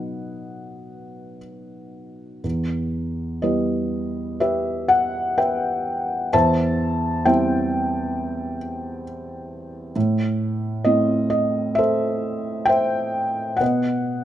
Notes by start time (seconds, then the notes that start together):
Already playing: B2 F#3 B3 D#4 B4 D#5 F#5
2.44 E2
3.42 G3 B3 E4 G4 B4 D#5
4.40 G4 B4 E5
4.88 F#5
5.38 B4 E5 G5
6.33 E2 C5 E5 A5
7.25 G3 C4 E4 C5 E5 G5
9.96 A2
10.85 A3 C4 E4 D#5
11.30 D#5
11.75 A4 C5 E5
12.65 C5 E5 G5
13.57 B2 B4 F#5
13.61 D#5